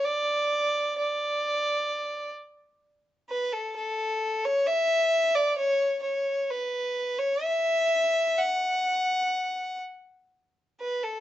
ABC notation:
X:1
M:4/4
L:1/16
Q:1/4=65
K:Dlyd
V:1 name="Fiddle"
d4 d6 z4 B A | A3 c e3 d c2 c2 B3 c | e4 f6 z4 B A |]